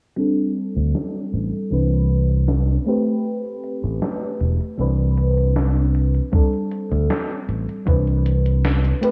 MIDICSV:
0, 0, Header, 1, 4, 480
1, 0, Start_track
1, 0, Key_signature, 0, "major"
1, 0, Tempo, 769231
1, 112, Time_signature, 4, 2, 24, 8
1, 5687, End_track
2, 0, Start_track
2, 0, Title_t, "FM electric piano"
2, 0, Program_c, 0, 5
2, 102, Note_on_c, 0, 55, 77
2, 109, Note_on_c, 0, 60, 68
2, 115, Note_on_c, 0, 62, 69
2, 120, Note_on_c, 0, 69, 86
2, 242, Control_c, 0, 64, 127
2, 1021, Note_off_c, 0, 55, 0
2, 1024, Note_off_c, 0, 60, 0
2, 1027, Note_off_c, 0, 62, 0
2, 1030, Note_off_c, 0, 69, 0
2, 1062, Note_on_c, 0, 52, 74
2, 1069, Note_on_c, 0, 60, 69
2, 1075, Note_on_c, 0, 62, 69
2, 1080, Control_c, 0, 64, 0
2, 1082, Note_on_c, 0, 71, 85
2, 1202, Control_c, 0, 64, 127
2, 1741, Note_off_c, 0, 52, 0
2, 1745, Note_off_c, 0, 60, 0
2, 1747, Note_off_c, 0, 62, 0
2, 1751, Note_off_c, 0, 71, 0
2, 1784, Note_on_c, 0, 57, 86
2, 1790, Note_on_c, 0, 60, 83
2, 1797, Note_on_c, 0, 67, 79
2, 1801, Control_c, 0, 64, 0
2, 1802, Note_on_c, 0, 71, 100
2, 1911, Control_c, 0, 64, 127
2, 2942, Note_off_c, 0, 57, 0
2, 2945, Note_off_c, 0, 60, 0
2, 2948, Note_off_c, 0, 67, 0
2, 2951, Note_off_c, 0, 71, 0
2, 2979, Note_on_c, 0, 52, 78
2, 2987, Note_on_c, 0, 60, 67
2, 2993, Note_on_c, 0, 62, 69
2, 2999, Note_on_c, 0, 71, 84
2, 3000, Control_c, 0, 64, 0
2, 3097, Control_c, 0, 64, 127
2, 3899, Note_off_c, 0, 52, 0
2, 3903, Note_off_c, 0, 60, 0
2, 3906, Note_off_c, 0, 62, 0
2, 3909, Note_off_c, 0, 71, 0
2, 3943, Note_on_c, 0, 55, 78
2, 3948, Note_on_c, 0, 60, 68
2, 3955, Note_on_c, 0, 62, 70
2, 3960, Control_c, 0, 64, 0
2, 3961, Note_on_c, 0, 69, 83
2, 4079, Control_c, 0, 64, 127
2, 4861, Note_off_c, 0, 55, 0
2, 4864, Note_off_c, 0, 60, 0
2, 4867, Note_off_c, 0, 62, 0
2, 4870, Note_off_c, 0, 69, 0
2, 4902, Note_on_c, 0, 52, 81
2, 4908, Note_on_c, 0, 60, 70
2, 4915, Note_on_c, 0, 62, 69
2, 4920, Control_c, 0, 64, 0
2, 4920, Note_on_c, 0, 71, 84
2, 5025, Control_c, 0, 64, 127
2, 5581, Note_off_c, 0, 52, 0
2, 5584, Note_off_c, 0, 60, 0
2, 5587, Note_off_c, 0, 62, 0
2, 5590, Note_off_c, 0, 71, 0
2, 5622, Note_on_c, 0, 57, 90
2, 5628, Note_on_c, 0, 60, 83
2, 5635, Note_on_c, 0, 67, 82
2, 5640, Note_on_c, 0, 71, 99
2, 5641, Control_c, 0, 64, 0
2, 5687, Note_off_c, 0, 57, 0
2, 5687, Note_off_c, 0, 60, 0
2, 5687, Note_off_c, 0, 67, 0
2, 5687, Note_off_c, 0, 71, 0
2, 5687, End_track
3, 0, Start_track
3, 0, Title_t, "Fingered electric bass"
3, 0, Program_c, 1, 33
3, 476, Note_on_c, 1, 38, 93
3, 573, Note_off_c, 1, 38, 0
3, 833, Note_on_c, 1, 33, 90
3, 936, Note_off_c, 1, 33, 0
3, 1072, Note_on_c, 1, 36, 85
3, 1723, Note_off_c, 1, 36, 0
3, 2395, Note_on_c, 1, 33, 97
3, 2492, Note_off_c, 1, 33, 0
3, 2750, Note_on_c, 1, 28, 89
3, 2855, Note_off_c, 1, 28, 0
3, 2990, Note_on_c, 1, 36, 86
3, 3859, Note_off_c, 1, 36, 0
3, 4315, Note_on_c, 1, 38, 97
3, 4412, Note_off_c, 1, 38, 0
3, 4671, Note_on_c, 1, 33, 90
3, 4775, Note_off_c, 1, 33, 0
3, 4909, Note_on_c, 1, 36, 88
3, 5561, Note_off_c, 1, 36, 0
3, 5687, End_track
4, 0, Start_track
4, 0, Title_t, "Drums"
4, 113, Note_on_c, 9, 42, 51
4, 175, Note_off_c, 9, 42, 0
4, 236, Note_on_c, 9, 42, 24
4, 299, Note_off_c, 9, 42, 0
4, 351, Note_on_c, 9, 42, 85
4, 414, Note_off_c, 9, 42, 0
4, 475, Note_on_c, 9, 42, 50
4, 537, Note_off_c, 9, 42, 0
4, 591, Note_on_c, 9, 38, 108
4, 591, Note_on_c, 9, 42, 50
4, 654, Note_off_c, 9, 38, 0
4, 654, Note_off_c, 9, 42, 0
4, 716, Note_on_c, 9, 42, 25
4, 778, Note_off_c, 9, 42, 0
4, 832, Note_on_c, 9, 42, 86
4, 895, Note_off_c, 9, 42, 0
4, 956, Note_on_c, 9, 42, 49
4, 1018, Note_off_c, 9, 42, 0
4, 1071, Note_on_c, 9, 42, 49
4, 1134, Note_off_c, 9, 42, 0
4, 1194, Note_on_c, 9, 42, 26
4, 1257, Note_off_c, 9, 42, 0
4, 1310, Note_on_c, 9, 42, 89
4, 1372, Note_off_c, 9, 42, 0
4, 1432, Note_on_c, 9, 42, 53
4, 1495, Note_off_c, 9, 42, 0
4, 1548, Note_on_c, 9, 38, 102
4, 1548, Note_on_c, 9, 42, 49
4, 1611, Note_off_c, 9, 38, 0
4, 1611, Note_off_c, 9, 42, 0
4, 1672, Note_on_c, 9, 42, 26
4, 1735, Note_off_c, 9, 42, 0
4, 1787, Note_on_c, 9, 42, 93
4, 1850, Note_off_c, 9, 42, 0
4, 1912, Note_on_c, 9, 42, 50
4, 1975, Note_off_c, 9, 42, 0
4, 2029, Note_on_c, 9, 42, 52
4, 2091, Note_off_c, 9, 42, 0
4, 2154, Note_on_c, 9, 42, 26
4, 2217, Note_off_c, 9, 42, 0
4, 2269, Note_on_c, 9, 42, 90
4, 2332, Note_off_c, 9, 42, 0
4, 2395, Note_on_c, 9, 42, 54
4, 2457, Note_off_c, 9, 42, 0
4, 2509, Note_on_c, 9, 38, 113
4, 2509, Note_on_c, 9, 42, 52
4, 2571, Note_off_c, 9, 38, 0
4, 2571, Note_off_c, 9, 42, 0
4, 2634, Note_on_c, 9, 42, 25
4, 2696, Note_off_c, 9, 42, 0
4, 2750, Note_on_c, 9, 42, 85
4, 2812, Note_off_c, 9, 42, 0
4, 2874, Note_on_c, 9, 42, 50
4, 2936, Note_off_c, 9, 42, 0
4, 2988, Note_on_c, 9, 42, 47
4, 3051, Note_off_c, 9, 42, 0
4, 3114, Note_on_c, 9, 42, 26
4, 3177, Note_off_c, 9, 42, 0
4, 3230, Note_on_c, 9, 42, 94
4, 3292, Note_off_c, 9, 42, 0
4, 3355, Note_on_c, 9, 42, 51
4, 3418, Note_off_c, 9, 42, 0
4, 3470, Note_on_c, 9, 38, 108
4, 3470, Note_on_c, 9, 42, 51
4, 3533, Note_off_c, 9, 38, 0
4, 3533, Note_off_c, 9, 42, 0
4, 3595, Note_on_c, 9, 42, 27
4, 3657, Note_off_c, 9, 42, 0
4, 3711, Note_on_c, 9, 42, 91
4, 3774, Note_off_c, 9, 42, 0
4, 3835, Note_on_c, 9, 42, 52
4, 3897, Note_off_c, 9, 42, 0
4, 3949, Note_on_c, 9, 36, 118
4, 3950, Note_on_c, 9, 42, 51
4, 4012, Note_off_c, 9, 36, 0
4, 4012, Note_off_c, 9, 42, 0
4, 4076, Note_on_c, 9, 42, 26
4, 4138, Note_off_c, 9, 42, 0
4, 4190, Note_on_c, 9, 42, 87
4, 4252, Note_off_c, 9, 42, 0
4, 4316, Note_on_c, 9, 42, 51
4, 4378, Note_off_c, 9, 42, 0
4, 4432, Note_on_c, 9, 38, 120
4, 4432, Note_on_c, 9, 42, 53
4, 4494, Note_off_c, 9, 38, 0
4, 4494, Note_off_c, 9, 42, 0
4, 4559, Note_on_c, 9, 42, 25
4, 4621, Note_off_c, 9, 42, 0
4, 4672, Note_on_c, 9, 42, 88
4, 4735, Note_off_c, 9, 42, 0
4, 4798, Note_on_c, 9, 42, 48
4, 4860, Note_off_c, 9, 42, 0
4, 4910, Note_on_c, 9, 36, 123
4, 4915, Note_on_c, 9, 42, 49
4, 4972, Note_off_c, 9, 36, 0
4, 4977, Note_off_c, 9, 42, 0
4, 5038, Note_on_c, 9, 42, 24
4, 5100, Note_off_c, 9, 42, 0
4, 5154, Note_on_c, 9, 42, 86
4, 5216, Note_off_c, 9, 42, 0
4, 5278, Note_on_c, 9, 42, 51
4, 5341, Note_off_c, 9, 42, 0
4, 5395, Note_on_c, 9, 38, 115
4, 5395, Note_on_c, 9, 42, 48
4, 5458, Note_off_c, 9, 38, 0
4, 5458, Note_off_c, 9, 42, 0
4, 5521, Note_on_c, 9, 42, 26
4, 5583, Note_off_c, 9, 42, 0
4, 5634, Note_on_c, 9, 42, 91
4, 5687, Note_off_c, 9, 42, 0
4, 5687, End_track
0, 0, End_of_file